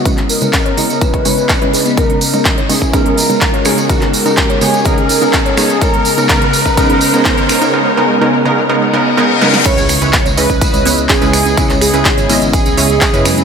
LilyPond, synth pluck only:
\new Staff \with { instrumentName = "Synth pluck" } { \time 4/4 \key cis \dorian \tempo 4 = 125 <cis gis cis' e' b'>8. <cis gis cis' e' b'>16 r8 <cis gis cis' e' dis''>4 <cis gis cis' e' cis''>16 r8 <cis gis cis' e' b'>8. | <cis gis b dis' ais'>8. <cis gis b dis' ais'>16 r8 <cis gis b dis' cis''>8 <cis gis b dis' ais'>8. <cis gis b dis' ais'>16 r8 <cis gis b dis' cis''>8 | <cis gis b dis' ais'>8. <cis gis b dis' ais'>16 r8 <cis gis b dis' cis''>8 <cis gis b dis' ais'>8. <cis gis b dis' ais'>16 r8 <cis gis b dis' cis''>8 | <cis gis b dis' ais'>8. <cis gis b dis' ais'>16 <cis gis b dis' ais'>8. <cis gis b dis' ais'>16 <cis gis b dis' ais'>8. <cis gis b dis' ais'>16 <cis gis b dis' ais'>8. <cis gis b dis' ais'>16 |
<cis gis b dis' ais'>8 <cis gis b dis' ais'>8 <cis gis b dis' ais'>8 <cis gis b dis' ais'>8 <cis gis b dis' ais'>8 <cis gis b dis' ais'>8 <cis gis b dis' ais'>8 <cis gis b dis' ais'>8 | <cis gis cis' e' b'>8. <cis gis cis' e' b'>16 r8 <cis gis cis' e' dis''>4 <cis gis cis' e' cis''>16 r8 <cis gis cis' e' b'>8. | <cis gis cis' e' b'>8. <cis gis cis' e' b'>16 r8 <cis gis cis' e' dis''>4 <cis gis cis' e' cis''>16 r8 <cis gis cis' e' b'>8. | }